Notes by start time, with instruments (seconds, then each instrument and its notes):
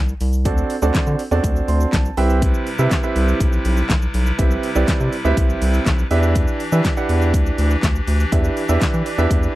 Already playing: analog synth bass C2
0.09 shaker
0.21 analog synth bass C2, open hi-hat, shaker
0.33 shaker
0.45 analog synth bass D2, grand piano C4 D4 F#4 A4 D5, kick, closed hi-hat, shaker
0.58 shaker
0.70 open hi-hat, shaker
0.82 analog synth bass D2, grand piano C4 D4 F#4 A4 D5, shaker
0.95 analog synth bass D3, kick, snare, clap, closed hi-hat, shaker
1.07 analog synth bass D3, shaker
1.19 open hi-hat, shaker
1.31 analog synth bass E2, grand piano C4 D4 F#4 A4 D5, shaker
1.44 analog synth bass D2, kick, closed hi-hat, shaker
1.56 shaker
1.68 analog synth bass D2, grand piano C6, open hi-hat, shaker
1.81 shaker
1.93 analog synth bass C2, grand piano A5, kick, snare, clap, closed hi-hat, shaker
2.05 shaker
2.17 analog synth bass C2, grand piano C4 E4 G4 B4 E5 G5, open hi-hat, shaker
2.30 shaker
2.42 pipe organ C3 G3 E4 B4, kick, closed hi-hat, shaker
2.54 shaker
2.67 open hi-hat, shaker
2.79 analog synth bass C3, grand piano C4 E4 G4 B4 E5, shaker
2.91 kick, snare, clap, closed hi-hat, shaker
3.03 grand piano C4 E4 G4 B4 E5, shaker
3.16 analog synth bass C2, open hi-hat, shaker
3.28 shaker
3.40 analog synth bass B1, kick, closed hi-hat, shaker
3.53 shaker
3.65 analog synth bass B1, open hi-hat, shaker
3.77 shaker
3.90 analog synth bass B1, kick, snare, clap, closed hi-hat, shaker
4.02 shaker
4.14 analog synth bass B1, open hi-hat, shaker
4.26 shaker
4.39 analog synth bass C2, grand piano C4 E4 G4 B4 E5, kick, closed hi-hat, shaker
4.51 shaker
4.63 open hi-hat, shaker
4.75 analog synth bass C2, grand piano C4 E4 G4 B4 D5, shaker
4.88 analog synth bass C3, kick, snare, clap, closed hi-hat, shaker
5.00 analog synth bass C3, shaker
5.13 open hi-hat, shaker
5.25 analog synth bass D2, grand piano C4 E4 G4 B4 E5, shaker
5.37 analog synth bass C2, kick, closed hi-hat, shaker
5.50 shaker
5.62 analog synth bass C2, open hi-hat, shaker
5.74 shaker
5.86 analog synth bass B1, kick, snare, clap, closed hi-hat, shaker
5.99 shaker
6.11 analog synth bass E2, pipe organ E3 D4 G4, grand piano D4 E4 G4 B4 E5, open hi-hat, shaker
6.23 shaker
6.35 kick, closed hi-hat, shaker
6.48 shaker
6.60 open hi-hat, shaker
6.72 analog synth bass E3, grand piano D4 E4 G4 B4 E5, shaker
6.85 kick, snare, clap, closed hi-hat, shaker
6.97 grand piano D4 E4 G4 B4 F#5, shaker
7.09 analog synth bass E2, open hi-hat, shaker
7.22 shaker
7.34 analog synth bass D2, kick, closed hi-hat, shaker
7.46 shaker
7.58 analog synth bass D2, open hi-hat, shaker
7.71 shaker
7.83 analog synth bass D2, kick, snare, clap, closed hi-hat, shaker
7.95 shaker
8.08 analog synth bass D2, open hi-hat, shaker
8.20 shaker
8.32 analog synth bass E2, grand piano D4 E4 G4 B4 E5, kick, closed hi-hat, shaker
8.44 shaker
8.57 open hi-hat, shaker
8.69 analog synth bass E2, grand piano D4 E4 G4 B4 E5, shaker
8.81 analog synth bass E3, kick, snare, clap, closed hi-hat, shaker
8.94 analog synth bass E3, shaker
9.06 grand piano D5, open hi-hat, shaker
9.18 analog synth bass E2, grand piano D4 E4 G4 B4 E5, shaker
9.31 analog synth bass E2, grand piano E5, kick, closed hi-hat, shaker
9.43 shaker